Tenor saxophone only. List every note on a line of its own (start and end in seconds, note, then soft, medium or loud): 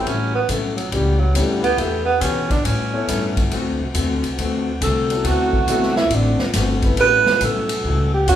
0.07 0.34 C#4 medium
0.35 0.52 B3 medium
0.50 0.76 A3 medium
0.76 0.94 F#3 medium
0.92 1.21 G3 medium
1.19 1.37 F#3 medium
1.36 1.63 G3 medium
1.63 1.81 B3 medium
1.79 2.05 A3 medium
2.05 2.22 B3 loud
2.21 2.50 C#4 medium
2.51 2.67 D4 loud
2.65 3.52 C#4 medium
4.83 5.28 A4 medium
5.27 5.96 F#4 medium
5.97 6.16 E4 medium
6.14 6.41 D4 medium
7.00 7.46 B4 loud
7.44 8.13 A4 medium
8.14 8.27 G4 loud
8.29 8.36 F#4 medium